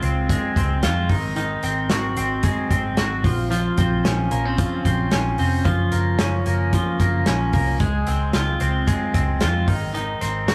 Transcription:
Already playing: G#3 F4
0.02 C#2 C4, closed hi-hat
0.29 G#3, kick, closed hi-hat
0.56 C#2 C4, kick, closed hi-hat
0.83 F2 F4, snare, closed hi-hat
1.09 G#1 D#3, kick, open hi-hat
1.36 D#3, closed hi-hat
1.63 G#1 C4, closed hi-hat
1.90 G#1 F#4, snare, closed hi-hat
2.17 G#1 C4, closed hi-hat
2.43 G#3, kick, closed hi-hat
2.71 G#1 C4, kick, closed hi-hat
2.97 G#1 F#4, snare, closed hi-hat
3.24 A#1 F3, kick, open hi-hat
3.51 F3, closed hi-hat
3.78 A#1 C4, kick, closed hi-hat
4.05 A#1 C#4, snare, closed hi-hat
4.31 A#1 A#3, closed hi-hat
4.45 C4
4.58 F3, kick, closed hi-hat
4.85 A#1 C4, kick, closed hi-hat
5.11 A#1 C#4, snare, closed hi-hat
5.38 F1 C4, open hi-hat
5.65 F#1 F3, kick, closed hi-hat
5.92 F#1 A#3, closed hi-hat
6.19 F#1 C#4, snare, closed hi-hat
6.46 F#1 A#3, closed hi-hat
6.73 F3, kick, closed hi-hat
7.00 F#1 A#3, kick, closed hi-hat
7.26 A#1 C#4, snare, closed hi-hat
7.53 C2 A#3, kick, open hi-hat
7.80 C#2 G#3, kick, closed hi-hat
8.07 C#2 C4, closed hi-hat
8.33 C#2 F4, snare, closed hi-hat
8.60 C#2 C4, closed hi-hat
8.87 G#3, kick, closed hi-hat
9.14 C#2 C4, kick, closed hi-hat
9.41 F2 F4, snare, closed hi-hat
9.68 G#1 D#3, kick, open hi-hat
9.94 D#3, closed hi-hat
10.21 G#1 C4, closed hi-hat
10.48 G#1 F#4, snare, closed hi-hat

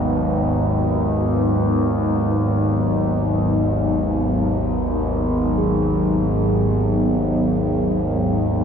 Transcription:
Already playing: G#1 D#2 G#2 F#3 B3 D#4
5.58 G#1 D#2 G#4

